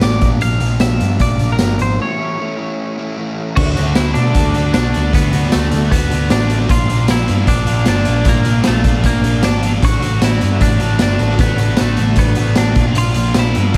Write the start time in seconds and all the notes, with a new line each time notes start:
0.01 A1 A2 D3 A3 D4 F#4 D5, snare, closed hi-hat, tambourine
0.21 A#1 A#2 F3 A#3 D4 F4, kick, closed hi-hat
0.41 A#1 A#2 F3 A#3 D4 F4 F5, closed hi-hat
0.60 A#1 A#3 D4 F4, closed hi-hat
0.80 A#1 F3 A#3 D4 F4 E5, snare, closed hi-hat, tambourine
0.99 G2 A#3 D4 F4, closed hi-hat
1.19 A#1 D5, kick, closed hi-hat
1.39 A#1 A#3 D4 F4, closed hi-hat
1.52 A#4
1.59 G1 A#2 F3 A#3 D4 F4, snare, closed hi-hat, tambourine
1.79 G#1 C5, closed hi-hat
2.00 A2 E3 A3 C#4 E4 C#5
2.18 A3 C#4 E4
2.38 E3 A3 C#4 E4
2.57 A3 C#4 E4
2.98 A3 C#4 E4
3.16 A2 E3 A3 C#4 E4
3.56 D2 D3 A3 D4 F#4, kick, crash
3.75 D2 A3 D4 F#4, closed hi-hat
3.94 D2 D3 A3 D4 E4 F#4, snare, closed hi-hat, tambourine
4.14 B2 A3 D4 F#4, closed hi-hat
4.34 D2 D3 A3 D4 F#4, kick, closed hi-hat
4.54 D2 A3 D4 F#4, closed hi-hat
4.74 B1 D3 A3 D4 F#4, snare, closed hi-hat, tambourine
4.94 D2 A3 D4 F#4, closed hi-hat
5.13 D2 D3 A3 B3 D4 F#4, kick, closed hi-hat
5.32 A3 D4 F#4, closed hi-hat
5.43 snare
5.52 D2 D3 A3 D4 F#4, snare, closed hi-hat, tambourine
5.71 D2 A3 D4 F#4, closed hi-hat
5.91 D2 D3 A3 B3 D4 F#4, kick, closed hi-hat
6.10 D2 A3 D4 F#4, closed hi-hat
6.28 A1 D3 A3 D4 F#4, snare, closed hi-hat, tambourine
6.49 A3 D4 F#4, closed hi-hat
6.60 snare
6.68 A#1 A#2 F3 A#3 D4 F4, kick, closed hi-hat
6.88 A#1 A#3 D4 F4, closed hi-hat
7.07 A#1 F3 A#3 D4 F4, snare, closed hi-hat, tambourine
7.11 E4
7.28 G2 A#3 D4 F4, closed hi-hat
7.47 A#1 A#2 F3 A#3 D4 F4, kick, closed hi-hat
7.66 A#1 A#3 D4 F4, closed hi-hat
7.84 G1 A#2 F3 A#3 D4 F4, snare, closed hi-hat, tambourine
8.05 A#1 A#3 D4 F4, closed hi-hat
8.25 A#1 A#2 F3 A#3 D4 F4, kick, closed hi-hat
8.29 A#3
8.45 A#3 D4 F4, closed hi-hat
8.64 F3 A3 A#3 D4 F4, snare, closed hi-hat, tambourine
8.68 A#1
8.84 A#1 A#3 D4 F4, kick, closed hi-hat
9.02 A#1 A#2 F3 A#3 D4 F4, kick, closed hi-hat
9.06 A#3
9.23 A#1 A#3 D4 F4, closed hi-hat
9.43 G#1 A#2 F3 A#3 D4 F4, snare, closed hi-hat, tambourine
9.61 A#3 D4 F4, closed hi-hat
9.83 A1 A2 D3 A3 D4 F#4, kick, closed hi-hat
10.01 A1 A3 D4 F#4, closed hi-hat
10.21 A1 D3 A3 D4 E4 F#4, snare, closed hi-hat, tambourine
10.40 G2 A3 D4 F#4, closed hi-hat
10.59 A1 A2 D3 A3 D4 F#4, kick, closed hi-hat
10.79 A1 A3 D4 F#4, closed hi-hat
10.99 G1 A2 D3 A3 D4 F#4, snare, closed hi-hat, tambourine
11.19 A1 A3 D4 F#4, closed hi-hat
11.29 snare
11.38 A1 A2 D3 A3 B3 D4 F#4, kick, closed hi-hat
11.58 A3 D4 F#4, closed hi-hat
11.77 A1 D3 A3 D4 F#4, snare, closed hi-hat, tambourine
11.81 A3
11.97 A1 A3 D4 F#4, closed hi-hat
12.16 A1 A2 D3 A3 B3 D4 F#4, kick, closed hi-hat
12.35 A1 A3 D4 F#4, closed hi-hat
12.55 A1 A2 D3 A3 D4 F#4, snare, closed hi-hat, tambourine
12.75 A#1 A#2 F3 A#3 D4 F4, kick, closed hi-hat
12.95 A#1 A#2 F3 A#3 D4 F4, closed hi-hat
13.14 A#1 A#3 D4 F4, closed hi-hat
13.34 A#1 F3 A#3 D4 F4, snare, closed hi-hat, tambourine
13.39 E4
13.55 G2 A#3 D4 F4, closed hi-hat
13.74 A#2, closed hi-hat